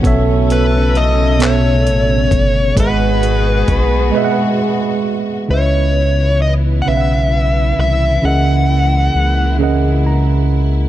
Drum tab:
HH |xxxxxx|xxx---|------|------|
CP |---x--|------|------|------|
BD |o----o|o-o---|------|------|